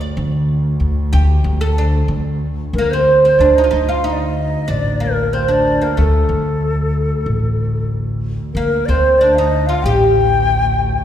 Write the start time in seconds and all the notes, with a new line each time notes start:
Already playing: D2
0.01 D5
0.17 D3
0.80 D2
1.13 D2 G4
1.44 D2
1.61 A4
1.78 D4
2.08 D2
2.73 D3 A#4
2.78 A#3
2.90 C4 C5
3.24 C4 C5
3.39 D2 D4 D5
3.55 D#4 D#5
3.64 F4
3.70 D2 D#4 D#5
3.89 F4 F5
4.04 D#4 D#5
4.13 D5
4.20 D#5
4.68 A1 D4 D5
5.00 A#3 A#4
5.33 C4 C5
5.48 D4 D5
5.82 A#3 A#4
5.97 D2 A3 A4
6.29 D2
7.26 A1
8.54 D2 A#3 A#4
8.86 D2 C4 D5
8.90 C5
9.18 D4 D5
9.35 D#4 D#5 F5
9.66 F4 F5
9.83 A1 G4 G5